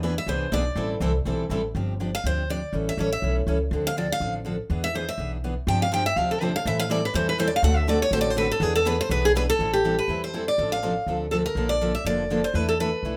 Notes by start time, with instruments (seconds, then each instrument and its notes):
Already playing: upright bass E2
0.03 steel-string acoustic guitar E3 B3 D4 G#4 B4
0.18 steel-string acoustic guitar E5
0.26 upright bass C2, steel-string acoustic guitar E3 B3 D4 G#4 B4 C5
0.52 upright bass B1, steel-string acoustic guitar E3 B3 D4 G#4 B4 D5
0.76 upright bass A1, steel-string acoustic guitar E3 G3 C4 E4 A4
1.00 upright bass C2, steel-string acoustic guitar E3 G3 C4 E4 A4
1.25 upright bass B1, steel-string acoustic guitar E3 G3 C4 E4 A4
1.49 upright bass A1, steel-string acoustic guitar E3 G3 C4 E4 A4
1.75 upright bass G1, steel-string acoustic guitar C3 F3 C4 D4 G4
2.00 steel-string acoustic guitar C3 F3 C4 D4 G4
2.15 steel-string acoustic guitar F5
2.24 upright bass D2, steel-string acoustic guitar C3 F3 C4 D4 G4 C5
2.50 steel-string acoustic guitar C3 F3 C4 D4 G4 D5
2.73 upright bass A1, steel-string acoustic guitar E3 G3 C#4 E4 A4
2.89 steel-string acoustic guitar E5
2.97 upright bass A1, steel-string acoustic guitar E3 G3 C#4 E4 A4 C#5
3.13 steel-string acoustic guitar E5
3.22 upright bass B1, steel-string acoustic guitar E3 G3 C#4 E4 A4
3.47 upright bass C#2, steel-string acoustic guitar E3 G3 C#4 E4 A4
3.71 upright bass D2, steel-string acoustic guitar D3 F3 C4 D4 A4
3.87 steel-string acoustic guitar F5
3.97 steel-string acoustic guitar D3 F3 C4 D4 A4 D5
4.12 steel-string acoustic guitar F5
4.20 upright bass A1, steel-string acoustic guitar D3 F3 C4 D4 A4
4.45 steel-string acoustic guitar D3 F3 C4 D4 A4
4.70 upright bass E2, steel-string acoustic guitar E3 B3 D4 G#4
4.84 steel-string acoustic guitar E5
4.94 steel-string acoustic guitar E3 B3 D4 G#4 C5
5.09 steel-string acoustic guitar E5
5.18 upright bass B1, steel-string acoustic guitar E3 B3 D4 G#4
5.44 steel-string acoustic guitar E3 B3 D4 G#4
5.67 upright bass G2, steel-string acoustic guitar C3 F3 C4 D4 G4 G5
5.82 steel-string acoustic guitar F5
5.93 steel-string acoustic guitar C3 F3 C4 D4 G4 G5
6.06 steel-string acoustic guitar E5
6.16 upright bass D2, steel-string acoustic guitar C3 F3 C4 D4 G4 F5
6.31 steel-string acoustic guitar A4
6.41 steel-string acoustic guitar C3 F3 C4 D4 G4 C5
6.56 steel-string acoustic guitar F5
6.65 upright bass A2, steel-string acoustic guitar E3 G3 C4 E4 A4 E5
6.80 steel-string acoustic guitar F5
6.89 steel-string acoustic guitar E3 G3 C4 E4 A4 D5
7.05 steel-string acoustic guitar B4
7.14 upright bass E2, steel-string acoustic guitar E3 G3 C4 E4 A4 C5
7.29 steel-string acoustic guitar B4
7.38 steel-string acoustic guitar E3 G3 C4 E4 A4 C5
7.48 steel-string acoustic guitar D5
7.56 steel-string acoustic guitar F5
7.62 upright bass D2, steel-string acoustic guitar D3 A3 C4 F#4 A4 F#5
7.77 steel-string acoustic guitar E5
7.87 steel-string acoustic guitar D3 A3 C4 F#4 A4 D5
8.02 steel-string acoustic guitar C#5
8.11 upright bass A1, steel-string acoustic guitar D3 A3 C4 F#4 A4 C5
8.21 steel-string acoustic guitar D5
8.30 steel-string acoustic guitar C5
8.36 steel-string acoustic guitar D3 A3 C4 F#4 A4 B4
8.51 steel-string acoustic guitar A4
8.60 upright bass E2, steel-string acoustic guitar E3 B3 D4 G#4 B4
8.76 steel-string acoustic guitar A4
8.86 steel-string acoustic guitar E3 B3 D4 G#4 B4
9.01 steel-string acoustic guitar C5
9.10 upright bass B1, steel-string acoustic guitar E3 B3 D4 G#4 B4
9.25 steel-string acoustic guitar G#4
9.36 steel-string acoustic guitar E3 B3 D4 G#4 B4
9.50 steel-string acoustic guitar A4
9.59 upright bass A1, steel-string acoustic guitar E3 G3 C4 E4 A4
9.73 steel-string acoustic guitar G4
9.84 steel-string acoustic guitar E3 G3 C4 E4 A4
9.99 steel-string acoustic guitar B4
10.07 upright bass E2, steel-string acoustic guitar E3 G3 C4 E4 A4
10.24 steel-string acoustic guitar C5
10.34 steel-string acoustic guitar E3 G3 C4 E4 A4
10.48 steel-string acoustic guitar D5
10.58 upright bass A1, steel-string acoustic guitar C3 F3 C4 D4 A4
10.72 steel-string acoustic guitar F5
10.83 steel-string acoustic guitar C3 F3 C4 D4 A4
11.07 upright bass D2, steel-string acoustic guitar C3 F3 C4 D4 A4
11.31 steel-string acoustic guitar C3 F3 C4 D4 A4
11.46 steel-string acoustic guitar A#4
11.55 upright bass A#1, steel-string acoustic guitar D3 F3 A#3 D4 A4
11.69 steel-string acoustic guitar D5
11.81 steel-string acoustic guitar D3 F3 A#3 D4 A4
11.95 steel-string acoustic guitar E5
12.05 upright bass F1, steel-string acoustic guitar D3 F3 A#3 D4 A4 D5
12.30 steel-string acoustic guitar D3 F3 A#3 D4 A4
12.44 steel-string acoustic guitar C5
12.54 upright bass E2, steel-string acoustic guitar E3 A3 D4 E4 A4 B4
12.69 steel-string acoustic guitar A4
12.80 steel-string acoustic guitar E3 A3 D4 E4 A4 B4
13.03 upright bass B1, steel-string acoustic guitar E3 A3 D4 E4 A4